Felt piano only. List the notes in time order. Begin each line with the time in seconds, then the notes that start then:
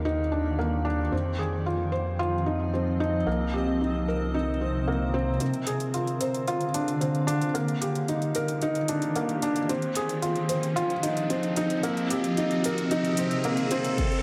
Already playing: A#3 D#4 G4 A#4
0.05 D#4
0.32 D4
0.59 A#3
0.85 D4
1.12 C4
1.39 G#4
1.66 F4
1.92 C5
2.19 F4
2.46 D#4
2.74 C4
3.00 D#4
3.27 A#3
3.54 G4
3.81 D#4
4.08 A#4
4.34 D#4
4.61 C4
4.88 A#3
5.14 C4
5.41 C4
5.67 G#4
5.94 F4
6.21 C5
6.48 F4
6.74 D4
7.01 C4
7.27 D4
7.54 A#3
7.81 G4
8.09 D#4
8.35 A#4
8.62 D#4
8.89 D4
9.16 A#3
9.43 D4
9.69 C4
9.96 G#4
10.22 F4
10.49 C5
10.76 F4
11.03 D#4
11.30 C4
11.57 D#4
11.83 A#3
12.11 G4
12.38 D#4
12.65 A#4
12.91 D#4
13.19 C4
13.45 A#3
13.72 C4
13.99 C4